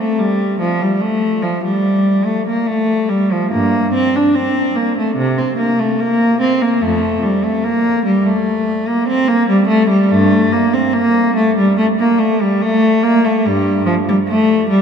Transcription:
0, 0, Header, 1, 2, 480
1, 0, Start_track
1, 0, Tempo, 827586
1, 107, Time_signature, 4, 2, 24, 8
1, 5866, Tempo, 834492
1, 8572, End_track
2, 0, Start_track
2, 0, Title_t, "Cello"
2, 0, Program_c, 0, 42
2, 0, Note_on_c, 0, 57, 76
2, 108, Note_off_c, 0, 57, 0
2, 108, Note_on_c, 0, 55, 77
2, 350, Note_off_c, 0, 55, 0
2, 350, Note_on_c, 0, 53, 76
2, 468, Note_off_c, 0, 53, 0
2, 473, Note_on_c, 0, 55, 68
2, 583, Note_on_c, 0, 57, 78
2, 592, Note_off_c, 0, 55, 0
2, 826, Note_on_c, 0, 53, 71
2, 828, Note_off_c, 0, 57, 0
2, 949, Note_off_c, 0, 53, 0
2, 949, Note_on_c, 0, 55, 76
2, 1302, Note_off_c, 0, 55, 0
2, 1309, Note_on_c, 0, 57, 70
2, 1430, Note_off_c, 0, 57, 0
2, 1436, Note_on_c, 0, 58, 70
2, 1548, Note_on_c, 0, 57, 81
2, 1552, Note_off_c, 0, 58, 0
2, 1791, Note_off_c, 0, 57, 0
2, 1792, Note_on_c, 0, 55, 77
2, 1913, Note_off_c, 0, 55, 0
2, 1921, Note_on_c, 0, 53, 71
2, 2037, Note_on_c, 0, 43, 60
2, 2038, Note_off_c, 0, 53, 0
2, 2038, Note_on_c, 0, 58, 79
2, 2260, Note_off_c, 0, 43, 0
2, 2272, Note_off_c, 0, 58, 0
2, 2281, Note_on_c, 0, 60, 86
2, 2396, Note_off_c, 0, 60, 0
2, 2412, Note_on_c, 0, 62, 75
2, 2522, Note_on_c, 0, 60, 86
2, 2524, Note_off_c, 0, 62, 0
2, 2757, Note_on_c, 0, 58, 76
2, 2759, Note_off_c, 0, 60, 0
2, 2877, Note_off_c, 0, 58, 0
2, 2887, Note_on_c, 0, 57, 70
2, 2996, Note_on_c, 0, 48, 88
2, 2999, Note_off_c, 0, 57, 0
2, 3114, Note_off_c, 0, 48, 0
2, 3121, Note_on_c, 0, 60, 76
2, 3233, Note_on_c, 0, 58, 86
2, 3238, Note_off_c, 0, 60, 0
2, 3352, Note_off_c, 0, 58, 0
2, 3361, Note_on_c, 0, 57, 75
2, 3478, Note_off_c, 0, 57, 0
2, 3479, Note_on_c, 0, 58, 90
2, 3716, Note_off_c, 0, 58, 0
2, 3716, Note_on_c, 0, 60, 86
2, 3832, Note_off_c, 0, 60, 0
2, 3837, Note_on_c, 0, 58, 76
2, 3953, Note_on_c, 0, 41, 60
2, 3954, Note_off_c, 0, 58, 0
2, 3955, Note_on_c, 0, 57, 79
2, 4175, Note_off_c, 0, 41, 0
2, 4190, Note_on_c, 0, 55, 79
2, 4192, Note_off_c, 0, 57, 0
2, 4311, Note_off_c, 0, 55, 0
2, 4316, Note_on_c, 0, 57, 80
2, 4430, Note_on_c, 0, 58, 96
2, 4434, Note_off_c, 0, 57, 0
2, 4670, Note_off_c, 0, 58, 0
2, 4670, Note_on_c, 0, 55, 76
2, 4787, Note_off_c, 0, 55, 0
2, 4791, Note_on_c, 0, 57, 75
2, 5147, Note_on_c, 0, 58, 80
2, 5149, Note_off_c, 0, 57, 0
2, 5267, Note_off_c, 0, 58, 0
2, 5268, Note_on_c, 0, 60, 86
2, 5381, Note_on_c, 0, 58, 98
2, 5385, Note_off_c, 0, 60, 0
2, 5503, Note_off_c, 0, 58, 0
2, 5504, Note_on_c, 0, 55, 82
2, 5613, Note_on_c, 0, 57, 95
2, 5622, Note_off_c, 0, 55, 0
2, 5736, Note_off_c, 0, 57, 0
2, 5740, Note_on_c, 0, 55, 79
2, 5857, Note_on_c, 0, 43, 71
2, 5860, Note_off_c, 0, 55, 0
2, 5860, Note_on_c, 0, 57, 88
2, 6083, Note_off_c, 0, 43, 0
2, 6099, Note_on_c, 0, 58, 79
2, 6102, Note_off_c, 0, 57, 0
2, 6222, Note_off_c, 0, 58, 0
2, 6223, Note_on_c, 0, 60, 82
2, 6336, Note_on_c, 0, 58, 96
2, 6344, Note_off_c, 0, 60, 0
2, 6582, Note_off_c, 0, 58, 0
2, 6582, Note_on_c, 0, 57, 83
2, 6703, Note_off_c, 0, 57, 0
2, 6706, Note_on_c, 0, 55, 77
2, 6820, Note_on_c, 0, 57, 104
2, 6825, Note_off_c, 0, 55, 0
2, 6867, Note_off_c, 0, 57, 0
2, 6946, Note_on_c, 0, 58, 88
2, 7058, Note_on_c, 0, 57, 87
2, 7064, Note_off_c, 0, 58, 0
2, 7181, Note_off_c, 0, 57, 0
2, 7189, Note_on_c, 0, 55, 82
2, 7302, Note_on_c, 0, 57, 98
2, 7306, Note_off_c, 0, 55, 0
2, 7542, Note_on_c, 0, 58, 101
2, 7543, Note_off_c, 0, 57, 0
2, 7664, Note_off_c, 0, 58, 0
2, 7667, Note_on_c, 0, 57, 87
2, 7785, Note_on_c, 0, 43, 75
2, 7786, Note_off_c, 0, 57, 0
2, 7788, Note_on_c, 0, 55, 90
2, 8008, Note_off_c, 0, 43, 0
2, 8020, Note_on_c, 0, 53, 93
2, 8026, Note_off_c, 0, 55, 0
2, 8066, Note_off_c, 0, 53, 0
2, 8152, Note_on_c, 0, 55, 89
2, 8198, Note_off_c, 0, 55, 0
2, 8261, Note_on_c, 0, 57, 100
2, 8497, Note_off_c, 0, 57, 0
2, 8505, Note_on_c, 0, 55, 89
2, 8572, Note_off_c, 0, 55, 0
2, 8572, End_track
0, 0, End_of_file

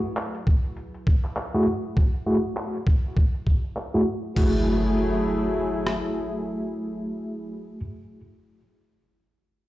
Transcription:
0, 0, Header, 1, 5, 480
1, 0, Start_track
1, 0, Key_signature, 3, "minor"
1, 0, Tempo, 600000
1, 1571, Time_signature, 4, 2, 24, 8
1, 7745, End_track
2, 0, Start_track
2, 0, Title_t, "Tine electric piano"
2, 0, Program_c, 0, 4
2, 1235, Note_on_c, 0, 66, 80
2, 1236, Note_on_c, 0, 57, 83
2, 1236, Note_on_c, 0, 68, 94
2, 1237, Note_on_c, 0, 64, 76
2, 1319, Note_off_c, 0, 57, 0
2, 1319, Note_off_c, 0, 64, 0
2, 1319, Note_off_c, 0, 66, 0
2, 1319, Note_off_c, 0, 68, 0
2, 1812, Note_on_c, 0, 64, 72
2, 1812, Note_on_c, 0, 66, 72
2, 1812, Note_on_c, 0, 68, 87
2, 1813, Note_on_c, 0, 57, 79
2, 1889, Note_off_c, 0, 57, 0
2, 1889, Note_off_c, 0, 64, 0
2, 1889, Note_off_c, 0, 66, 0
2, 1889, Note_off_c, 0, 68, 0
2, 3155, Note_on_c, 0, 64, 78
2, 3155, Note_on_c, 0, 66, 80
2, 3155, Note_on_c, 0, 68, 93
2, 3156, Note_on_c, 0, 57, 84
2, 3207, Note_off_c, 0, 57, 0
2, 3207, Note_off_c, 0, 64, 0
2, 3207, Note_off_c, 0, 66, 0
2, 3207, Note_off_c, 0, 68, 0
2, 3493, Note_on_c, 0, 57, 78
2, 3493, Note_on_c, 0, 66, 72
2, 3493, Note_on_c, 0, 68, 84
2, 3495, Note_on_c, 0, 64, 71
2, 6237, Note_off_c, 0, 57, 0
2, 6237, Note_off_c, 0, 68, 0
2, 6238, Note_off_c, 0, 66, 0
2, 6239, Note_off_c, 0, 64, 0
2, 7745, End_track
3, 0, Start_track
3, 0, Title_t, "Analog synth pad"
3, 0, Program_c, 1, 89
3, 0, Note_on_c, 1, 54, 78
3, 0, Note_on_c, 1, 64, 74
3, 0, Note_on_c, 1, 68, 71
3, 0, Note_on_c, 1, 71, 86
3, 3461, Note_off_c, 1, 54, 0
3, 3461, Note_off_c, 1, 64, 0
3, 3461, Note_off_c, 1, 68, 0
3, 3490, Note_off_c, 1, 71, 0
3, 3491, Note_on_c, 1, 57, 83
3, 3492, Note_on_c, 1, 68, 71
3, 3493, Note_on_c, 1, 54, 75
3, 3493, Note_on_c, 1, 64, 71
3, 6019, Note_off_c, 1, 57, 0
3, 6020, Note_off_c, 1, 54, 0
3, 6020, Note_off_c, 1, 64, 0
3, 6020, Note_off_c, 1, 68, 0
3, 7745, End_track
4, 0, Start_track
4, 0, Title_t, "Impact"
4, 0, Program_c, 2, 103
4, 3491, Note_on_c, 2, 60, 64
4, 6267, Note_off_c, 2, 60, 0
4, 7745, End_track
5, 0, Start_track
5, 0, Title_t, "Drums"
5, 134, Note_on_c, 9, 39, 108
5, 134, Note_on_c, 9, 42, 72
5, 214, Note_off_c, 9, 39, 0
5, 214, Note_off_c, 9, 42, 0
5, 277, Note_on_c, 9, 42, 49
5, 357, Note_off_c, 9, 42, 0
5, 375, Note_on_c, 9, 36, 96
5, 455, Note_off_c, 9, 36, 0
5, 517, Note_on_c, 9, 42, 35
5, 597, Note_off_c, 9, 42, 0
5, 613, Note_on_c, 9, 42, 73
5, 693, Note_off_c, 9, 42, 0
5, 755, Note_on_c, 9, 42, 50
5, 835, Note_off_c, 9, 42, 0
5, 854, Note_on_c, 9, 36, 96
5, 934, Note_off_c, 9, 36, 0
5, 994, Note_on_c, 9, 39, 33
5, 1074, Note_off_c, 9, 39, 0
5, 1092, Note_on_c, 9, 39, 105
5, 1092, Note_on_c, 9, 42, 74
5, 1172, Note_off_c, 9, 39, 0
5, 1172, Note_off_c, 9, 42, 0
5, 1235, Note_on_c, 9, 42, 47
5, 1315, Note_off_c, 9, 42, 0
5, 1573, Note_on_c, 9, 42, 76
5, 1574, Note_on_c, 9, 36, 111
5, 1653, Note_off_c, 9, 42, 0
5, 1654, Note_off_c, 9, 36, 0
5, 1715, Note_on_c, 9, 42, 52
5, 1795, Note_off_c, 9, 42, 0
5, 2053, Note_on_c, 9, 39, 109
5, 2053, Note_on_c, 9, 42, 78
5, 2133, Note_off_c, 9, 39, 0
5, 2133, Note_off_c, 9, 42, 0
5, 2197, Note_on_c, 9, 42, 51
5, 2277, Note_off_c, 9, 42, 0
5, 2293, Note_on_c, 9, 36, 98
5, 2373, Note_off_c, 9, 36, 0
5, 2436, Note_on_c, 9, 42, 36
5, 2516, Note_off_c, 9, 42, 0
5, 2533, Note_on_c, 9, 36, 95
5, 2533, Note_on_c, 9, 42, 77
5, 2613, Note_off_c, 9, 36, 0
5, 2613, Note_off_c, 9, 42, 0
5, 2676, Note_on_c, 9, 42, 51
5, 2756, Note_off_c, 9, 42, 0
5, 2773, Note_on_c, 9, 36, 58
5, 2853, Note_off_c, 9, 36, 0
5, 2917, Note_on_c, 9, 42, 35
5, 2997, Note_off_c, 9, 42, 0
5, 3012, Note_on_c, 9, 39, 107
5, 3012, Note_on_c, 9, 42, 76
5, 3092, Note_off_c, 9, 39, 0
5, 3092, Note_off_c, 9, 42, 0
5, 3157, Note_on_c, 9, 39, 34
5, 3157, Note_on_c, 9, 42, 51
5, 3237, Note_off_c, 9, 39, 0
5, 3237, Note_off_c, 9, 42, 0
5, 3397, Note_on_c, 9, 42, 36
5, 3477, Note_off_c, 9, 42, 0
5, 3491, Note_on_c, 9, 49, 83
5, 3492, Note_on_c, 9, 36, 110
5, 3571, Note_off_c, 9, 49, 0
5, 3572, Note_off_c, 9, 36, 0
5, 4693, Note_on_c, 9, 37, 59
5, 4773, Note_off_c, 9, 37, 0
5, 7745, End_track
0, 0, End_of_file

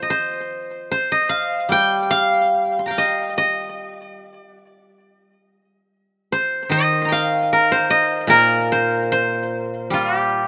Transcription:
0, 0, Header, 1, 2, 480
1, 0, Start_track
1, 0, Tempo, 810811
1, 54, Time_signature, 2, 2, 24, 8
1, 1975, Tempo, 851064
1, 3415, Tempo, 801068
1, 4855, Tempo, 820793
1, 6132, End_track
2, 0, Start_track
2, 0, Title_t, "Guzheng"
2, 0, Program_c, 0, 107
2, 0, Note_on_c, 0, 53, 51
2, 14, Note_on_c, 0, 75, 67
2, 60, Note_on_c, 0, 72, 95
2, 525, Note_off_c, 0, 53, 0
2, 539, Note_off_c, 0, 72, 0
2, 542, Note_on_c, 0, 72, 98
2, 660, Note_off_c, 0, 75, 0
2, 662, Note_on_c, 0, 75, 96
2, 765, Note_on_c, 0, 77, 107
2, 999, Note_on_c, 0, 55, 64
2, 1017, Note_on_c, 0, 79, 127
2, 1244, Note_off_c, 0, 77, 0
2, 1247, Note_on_c, 0, 77, 122
2, 1652, Note_on_c, 0, 84, 37
2, 1692, Note_on_c, 0, 82, 49
2, 1700, Note_off_c, 0, 79, 0
2, 1702, Note_on_c, 0, 79, 50
2, 1714, Note_off_c, 0, 72, 0
2, 1717, Note_off_c, 0, 77, 0
2, 1720, Note_on_c, 0, 77, 50
2, 1721, Note_off_c, 0, 75, 0
2, 1764, Note_on_c, 0, 75, 91
2, 1996, Note_off_c, 0, 75, 0
2, 1998, Note_on_c, 0, 75, 101
2, 2404, Note_off_c, 0, 84, 0
2, 2445, Note_off_c, 0, 55, 0
2, 2497, Note_off_c, 0, 82, 0
2, 2591, Note_off_c, 0, 79, 0
2, 2672, Note_off_c, 0, 77, 0
2, 3007, Note_off_c, 0, 75, 0
2, 3675, Note_on_c, 0, 72, 100
2, 3897, Note_on_c, 0, 51, 62
2, 3910, Note_on_c, 0, 75, 124
2, 4091, Note_on_c, 0, 84, 52
2, 4111, Note_on_c, 0, 82, 55
2, 4131, Note_on_c, 0, 79, 61
2, 4154, Note_on_c, 0, 77, 99
2, 4396, Note_on_c, 0, 70, 99
2, 4508, Note_off_c, 0, 72, 0
2, 4510, Note_on_c, 0, 72, 103
2, 4620, Note_off_c, 0, 75, 0
2, 4622, Note_on_c, 0, 75, 109
2, 4843, Note_on_c, 0, 46, 75
2, 4855, Note_off_c, 0, 70, 0
2, 4857, Note_on_c, 0, 70, 127
2, 4874, Note_off_c, 0, 84, 0
2, 4949, Note_off_c, 0, 82, 0
2, 5057, Note_off_c, 0, 79, 0
2, 5102, Note_off_c, 0, 72, 0
2, 5105, Note_on_c, 0, 72, 105
2, 5145, Note_off_c, 0, 77, 0
2, 5329, Note_off_c, 0, 51, 0
2, 5336, Note_off_c, 0, 72, 0
2, 5338, Note_on_c, 0, 72, 111
2, 5674, Note_off_c, 0, 75, 0
2, 5797, Note_on_c, 0, 55, 75
2, 5815, Note_on_c, 0, 65, 109
2, 5956, Note_off_c, 0, 65, 0
2, 5956, Note_on_c, 0, 67, 109
2, 6101, Note_off_c, 0, 70, 0
2, 6132, Note_off_c, 0, 46, 0
2, 6132, Note_off_c, 0, 55, 0
2, 6132, Note_off_c, 0, 67, 0
2, 6132, Note_off_c, 0, 72, 0
2, 6132, End_track
0, 0, End_of_file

